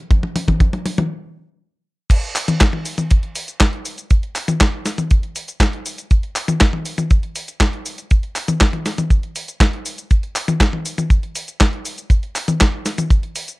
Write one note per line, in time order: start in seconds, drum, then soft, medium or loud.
0.11 kick loud
0.11 closed hi-hat medium
0.11 mid tom medium
0.23 mid tom medium
0.36 open hi-hat loud
0.36 mid tom loud
0.48 kick medium
0.48 closed hi-hat medium
0.48 mid tom medium
0.48 high tom medium
0.60 kick loud
0.60 closed hi-hat medium
0.60 mid tom loud
0.73 closed hi-hat soft
0.73 mid tom medium
0.86 open hi-hat loud
0.86 mid tom loud
0.98 closed hi-hat soft
0.98 mid tom medium
0.98 high tom medium
2.10 kick loud
2.10 closed hi-hat medium
2.10 crash loud
2.10 cabasa soft
2.23 closed hi-hat soft
2.36 clap medium
2.36 open hi-hat loud
2.36 cabasa medium
2.48 closed hi-hat medium
2.48 high tom medium
2.48 cabasa soft
2.61 kick loud
2.61 snare loud
2.61 clap medium
2.61 closed hi-hat medium
2.61 cabasa soft
2.73 high tom medium
2.85 open hi-hat loud
2.85 cabasa medium
2.98 closed hi-hat medium
2.98 high tom medium
2.98 cabasa soft
3.11 kick loud
3.11 closed hi-hat medium
3.11 cabasa soft
3.23 closed hi-hat soft
3.35 open hi-hat loud
3.35 cabasa medium
3.48 closed hi-hat medium
3.48 cabasa soft
3.60 kick loud
3.60 snare loud
3.60 clap loud
3.60 closed hi-hat medium
3.60 cabasa soft
3.73 closed hi-hat soft
3.85 open hi-hat loud
3.85 cabasa medium
3.98 closed hi-hat medium
3.98 cabasa soft
4.10 kick loud
4.10 closed hi-hat medium
4.10 cabasa soft
4.23 closed hi-hat soft
4.36 clap medium
4.36 open hi-hat loud
4.36 cabasa medium
4.48 closed hi-hat medium
4.48 high tom medium
4.48 cabasa soft
4.61 kick loud
4.61 snare loud
4.61 clap loud
4.61 closed hi-hat medium
4.61 cabasa soft
4.86 snare medium
4.86 open hi-hat loud
4.86 cabasa medium
4.98 closed hi-hat medium
4.98 high tom medium
4.98 cabasa soft
5.11 kick loud
5.11 closed hi-hat medium
5.11 cabasa soft
5.23 closed hi-hat soft
5.36 open hi-hat loud
5.36 cabasa medium
5.48 closed hi-hat medium
5.48 cabasa soft
5.60 kick loud
5.60 snare loud
5.60 clap loud
5.60 closed hi-hat medium
5.60 cabasa soft
5.73 closed hi-hat soft
5.86 open hi-hat loud
5.86 cabasa medium
5.98 closed hi-hat medium
5.98 cabasa soft
6.11 kick loud
6.11 closed hi-hat medium
6.11 cabasa soft
6.23 closed hi-hat soft
6.36 clap medium
6.36 open hi-hat loud
6.36 cabasa medium
6.48 closed hi-hat medium
6.48 high tom medium
6.48 cabasa soft
6.61 kick loud
6.61 snare loud
6.61 clap medium
6.61 closed hi-hat medium
6.61 cabasa soft
6.73 high tom medium
6.86 open hi-hat loud
6.86 cabasa medium
6.98 closed hi-hat medium
6.98 high tom medium
6.98 cabasa soft
7.11 kick loud
7.11 closed hi-hat medium
7.11 cabasa soft
7.23 closed hi-hat soft
7.36 open hi-hat loud
7.36 cabasa medium
7.48 closed hi-hat medium
7.48 cabasa soft
7.60 kick loud
7.60 snare loud
7.60 clap loud
7.60 closed hi-hat medium
7.60 cabasa soft
7.73 closed hi-hat soft
7.86 open hi-hat loud
7.86 cabasa medium
7.98 closed hi-hat medium
7.98 cabasa soft
8.11 kick loud
8.11 closed hi-hat medium
8.11 cabasa soft
8.23 closed hi-hat soft
8.36 clap medium
8.36 open hi-hat loud
8.36 cabasa medium
8.48 closed hi-hat medium
8.48 high tom medium
8.48 cabasa soft
8.61 kick loud
8.61 snare loud
8.61 clap medium
8.61 closed hi-hat medium
8.61 cabasa soft
8.73 closed hi-hat soft
8.73 high tom medium
8.86 snare medium
8.86 open hi-hat loud
8.86 cabasa medium
8.98 closed hi-hat medium
8.98 high tom medium
8.98 cabasa soft
9.10 kick loud
9.10 closed hi-hat medium
9.10 cabasa soft
9.23 closed hi-hat soft
9.36 open hi-hat loud
9.36 cabasa medium
9.48 closed hi-hat medium
9.48 cabasa soft
9.60 kick loud
9.60 snare loud
9.60 clap medium
9.60 closed hi-hat medium
9.60 cabasa soft
9.73 closed hi-hat soft
9.86 open hi-hat loud
9.86 cabasa medium
9.98 closed hi-hat medium
9.98 cabasa soft
10.11 kick loud
10.11 closed hi-hat medium
10.11 cabasa soft
10.23 closed hi-hat soft
10.36 clap medium
10.36 open hi-hat loud
10.36 cabasa medium
10.48 closed hi-hat medium
10.48 high tom medium
10.48 cabasa soft
10.60 kick loud
10.60 snare loud
10.60 clap medium
10.60 closed hi-hat medium
10.60 cabasa soft
10.73 high tom medium
10.86 open hi-hat loud
10.86 cabasa medium
10.98 closed hi-hat medium
10.98 high tom medium
10.98 cabasa soft
11.10 kick loud
11.10 closed hi-hat medium
11.10 cabasa soft
11.23 closed hi-hat soft
11.36 open hi-hat loud
11.36 cabasa medium
11.48 closed hi-hat medium
11.48 cabasa soft
11.61 kick loud
11.61 snare loud
11.61 clap medium
11.61 closed hi-hat medium
11.61 cabasa soft
11.73 closed hi-hat soft
11.85 open hi-hat loud
11.85 cabasa medium
11.98 closed hi-hat medium
11.98 cabasa soft
12.10 kick loud
12.10 closed hi-hat medium
12.10 cabasa soft
12.23 closed hi-hat soft
12.36 clap medium
12.36 open hi-hat loud
12.36 cabasa medium
12.48 closed hi-hat medium
12.48 high tom medium
12.48 cabasa soft
12.61 kick loud
12.61 snare loud
12.61 clap medium
12.61 closed hi-hat medium
12.61 cabasa soft
12.86 snare medium
12.86 open hi-hat loud
12.86 cabasa medium
12.98 closed hi-hat medium
12.98 high tom medium
12.98 cabasa soft
13.10 kick loud
13.10 closed hi-hat medium
13.10 cabasa soft
13.23 closed hi-hat soft
13.36 open hi-hat loud
13.36 cabasa medium
13.48 closed hi-hat medium
13.48 cabasa soft